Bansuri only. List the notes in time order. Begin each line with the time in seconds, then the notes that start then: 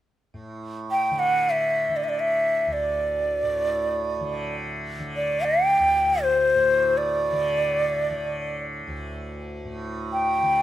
0.91 G5
1.19 F#5
1.50 E5
1.96 D5
2.04 E5
2.09 D5
2.20 E5
2.73 D5
5.16 D5
5.45 G5
6.23 C5
6.98 D5
10.13 G5